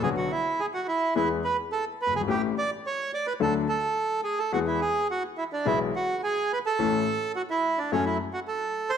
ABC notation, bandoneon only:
X:1
M:4/4
L:1/16
Q:1/4=107
K:A
V:1 name="Bandoneon"
G F E2 G F E2 E2 B2 A2 B G | =G2 d2 c2 d B A2 A4 ^G A | F E G2 F2 E D E2 F2 G2 B A- | A4 F E2 D C E2 F A3 =c |]